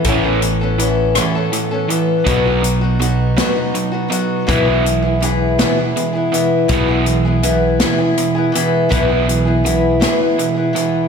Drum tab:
HH |xxxxxx|xxxxxx|xxxxxx|xxxxxx|
SD |---r--|---o--|---o--|---o--|
BD |o-----|o-----|o-----|o-----|

HH |xxxxxx|
SD |---o--|
BD |o-----|